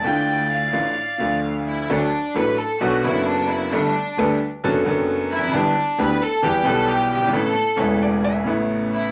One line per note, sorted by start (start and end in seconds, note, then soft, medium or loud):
0.00 0.70 D2 medium
0.00 0.70 A3 medium
0.00 0.69 E4 medium
0.00 1.40 D5 medium
0.00 0.50 G5 medium
0.04 0.70 D2 medium
0.04 0.70 D3 medium
0.04 0.71 D4 medium
0.04 0.71 F4 medium
0.51 1.63 F5 medium
0.73 0.93 A1 medium
0.73 0.93 A2 medium
0.73 0.93 E3 medium
0.73 0.93 A3 medium
0.73 0.93 D4 medium
0.73 0.93 F4 medium
1.18 1.86 D2 medium
1.18 1.87 D2 medium
1.18 1.87 D3 medium
1.18 1.86 F3 medium
1.18 1.86 A3 medium
1.18 1.87 D4 medium
1.18 1.88 F4 medium
1.67 1.88 E4 medium
1.89 2.09 D2 medium
1.89 2.10 D3 medium
1.89 2.09 F#3 medium
1.89 2.09 A3 medium
1.89 2.36 D4 medium
1.89 2.10 D4 medium
1.89 2.09 A4 medium
2.35 2.55 A1 medium
2.35 2.55 A2 medium
2.35 2.55 F#3 medium
2.35 2.55 A3 medium
2.35 2.55 D4 medium
2.35 2.55 A4 medium
2.35 2.59 B4 loud
2.58 2.81 A4 medium
2.81 3.00 B1 loud
2.81 3.00 B1 medium
2.81 3.01 B2 medium
2.81 3.00 F#3 medium
2.81 3.00 B3 medium
2.81 3.00 D4 medium
2.81 3.02 F#4 loud
2.81 3.01 A4 medium
3.03 3.69 F#1 loud
3.03 3.69 F#1 medium
3.03 3.69 F#2 medium
3.03 3.69 F#3 medium
3.03 3.69 B3 medium
3.03 3.70 D4 medium
3.03 3.27 E4 medium
3.03 3.70 A4 medium
3.26 3.49 D4 medium
3.48 3.72 E4 medium
3.72 3.92 G1 medium
3.72 3.92 G2 medium
3.72 3.92 G3 medium
3.72 3.92 A3 medium
3.72 4.41 D4 medium
3.72 3.92 D4 medium
3.72 3.92 A4 medium
4.17 4.37 D2 loud
4.17 4.38 D2 medium
4.17 4.38 D3 medium
4.17 4.37 G3 medium
4.17 4.37 A3 medium
4.17 4.37 D4 medium
4.17 4.38 A4 medium
4.17 4.61 B4 loud
4.63 4.82 F#1 loud
4.63 4.83 F#2 loud
4.63 4.83 F#3 medium
4.63 4.83 B3 medium
4.63 4.83 D4 medium
4.63 4.83 A4 medium
4.63 5.17 A4 loud
4.86 5.31 F#1 loud
4.86 5.47 F#2 medium
4.86 5.50 F#3 medium
4.86 5.50 B3 medium
4.86 5.51 D4 medium
4.86 5.52 A4 medium
5.31 5.53 F1 medium
5.31 5.53 E4 loud
5.38 5.43 E2 medium
5.42 5.48 F2 medium
5.48 5.54 F#2 medium
5.53 5.72 G1 loud
5.53 5.73 G1 medium
5.53 5.73 G2 medium
5.53 5.72 E3 medium
5.53 5.73 B3 medium
5.53 5.73 D4 medium
5.53 5.99 D4 loud
5.53 5.73 G4 medium
5.98 6.17 D2 loud
5.98 6.18 D2 medium
5.98 6.18 D3 medium
5.98 6.17 E3 medium
5.98 6.17 B3 medium
5.98 6.17 D4 medium
5.98 6.17 G4 medium
5.98 6.21 B4 loud
6.21 6.43 A4 loud
6.42 6.62 E2 loud
6.42 6.62 E3 loud
6.42 6.62 G3 medium
6.42 6.62 B3 medium
6.42 6.66 G4 loud
6.42 6.62 G4 medium
6.63 7.30 B1 medium
6.63 7.10 B1 loud
6.63 7.29 B2 medium
6.63 7.29 E3 medium
6.63 7.29 G3 medium
6.63 7.30 B3 medium
6.63 6.89 A4 loud
6.67 7.31 G4 medium
6.89 7.10 G4 loud
7.11 7.33 G1 medium
7.11 7.32 G4 medium
7.16 7.22 F#1 medium
7.22 7.28 G1 medium
7.27 7.33 G#1 medium
7.33 7.52 A1 medium
7.33 7.52 A1 loud
7.33 7.52 A2 medium
7.33 7.52 C#3 medium
7.33 7.52 A3 medium
7.33 7.52 B3 medium
7.33 7.52 E4 medium
7.33 7.98 A4 medium
7.76 8.43 E1 medium
7.76 8.43 E1 loud
7.76 8.43 E2 medium
7.76 8.42 C#3 medium
7.76 8.43 A3 medium
7.76 8.43 B3 medium
7.76 8.02 C#5 medium
7.80 8.44 E4 medium
8.03 8.23 D5 medium
8.24 8.65 E5 loud
8.44 9.12 A1 medium
8.44 9.12 A1 loud
8.44 9.12 A2 medium
8.44 9.11 C#3 medium
8.44 9.12 A3 medium
8.44 9.12 B3 medium
8.48 9.12 E4 medium
8.65 8.78 D5 loud
8.93 9.12 E4 medium